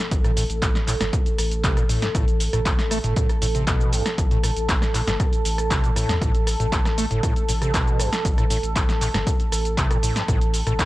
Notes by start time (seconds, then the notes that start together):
Already playing: A4
0.11 A1, kick, closed hi-hat, shaker
0.24 A2, cross-stick, closed hi-hat, shaker
0.37 A2, open hi-hat, shaker
0.50 A1, closed hi-hat, shaker
0.62 A2, kick, cross-stick, clap, closed hi-hat, shaker
0.75 snare, shaker
0.88 A2, clap, open hi-hat, shaker
1.00 G1 G2, cross-stick, snare, closed hi-hat, shaker
1.13 A2, kick, closed hi-hat, shaker
1.26 closed hi-hat, shaker
1.38 A1, cross-stick, open hi-hat, shaker
1.51 closed hi-hat, shaker
1.64 C3, kick, clap, closed hi-hat, shaker
1.77 A2, cross-stick, closed hi-hat, shaker
1.89 A2, open hi-hat, shaker
2.02 G2, snare, closed hi-hat, shaker
2.15 A1 A2, kick, cross-stick, closed hi-hat, shaker
2.28 closed hi-hat, shaker
2.40 open hi-hat, shaker
2.53 A1 A2, cross-stick, closed hi-hat, shaker
2.66 A2, kick, clap, closed hi-hat, shaker
2.79 snare, shaker
2.91 A3, cross-stick, open hi-hat, shaker
3.04 G1 A2, closed hi-hat, shaker
3.16 A2, kick, closed hi-hat, shaker
3.29 cross-stick, closed hi-hat, shaker
3.42 A1 A2, open hi-hat, shaker
3.55 C3, closed hi-hat, shaker
3.67 B2, kick, cross-stick, clap, closed hi-hat, shaker
3.81 shaker
3.93 G2, open hi-hat, shaker
4.06 cross-stick, snare, closed hi-hat, shaker
4.18 A1, kick, closed hi-hat, shaker
4.31 A2, closed hi-hat, shaker
4.43 A2, cross-stick, open hi-hat, shaker
4.56 A1, closed hi-hat, shaker
4.69 A2, kick, clap, closed hi-hat, shaker
4.82 cross-stick, snare, shaker
4.94 A2, clap, open hi-hat, shaker
5.07 G1 G2, snare, closed hi-hat, shaker
5.20 A2, kick, cross-stick, closed hi-hat, shaker
5.33 closed hi-hat, shaker
5.45 A1, open hi-hat, shaker
5.58 cross-stick, closed hi-hat, shaker
5.71 C3, kick, clap, closed hi-hat, shaker
5.84 A2, closed hi-hat, shaker
5.96 A2, cross-stick, open hi-hat, shaker
6.09 E2 G2, snare, closed hi-hat, shaker
6.21 A1 A2, kick, closed hi-hat, shaker
6.35 closed hi-hat, shaker
6.47 cross-stick, open hi-hat, shaker
6.60 A1 A2, closed hi-hat, shaker
6.72 A2, kick, clap, closed hi-hat, shaker
6.85 cross-stick, snare, shaker
6.98 A3, open hi-hat, shaker
7.11 G1 A2, closed hi-hat, shaker
7.23 A2, kick, cross-stick, closed hi-hat, shaker
7.36 closed hi-hat, shaker
7.49 A1 A2, open hi-hat, shaker
7.62 C3, cross-stick, closed hi-hat, shaker
7.74 B2, kick, clap, closed hi-hat, shaker
7.88 shaker
8.00 G2, cross-stick, open hi-hat, shaker
8.13 snare, closed hi-hat, shaker
8.25 A1, kick, closed hi-hat, shaker
8.38 A2, cross-stick, closed hi-hat, shaker
8.50 A2, open hi-hat, shaker
8.63 A1, closed hi-hat, shaker
8.76 A2, kick, cross-stick, clap, closed hi-hat, shaker
8.89 snare, shaker
9.01 A2, clap, open hi-hat, shaker
9.14 G1 G2, cross-stick, snare, closed hi-hat, shaker
9.27 A2, kick, closed hi-hat, shaker
9.40 closed hi-hat, shaker
9.52 A1, cross-stick, open hi-hat, shaker
9.65 closed hi-hat, shaker
9.78 C3, kick, clap, closed hi-hat, shaker
9.91 A2, cross-stick, closed hi-hat, shaker
10.03 A2, open hi-hat, shaker
10.16 G2, snare, closed hi-hat, shaker
10.28 A1 A2, kick, cross-stick, closed hi-hat, shaker
10.41 closed hi-hat, shaker
10.54 open hi-hat, shaker
10.67 A1 A2, cross-stick, closed hi-hat, shaker
10.79 A2, kick, clap, closed hi-hat, shaker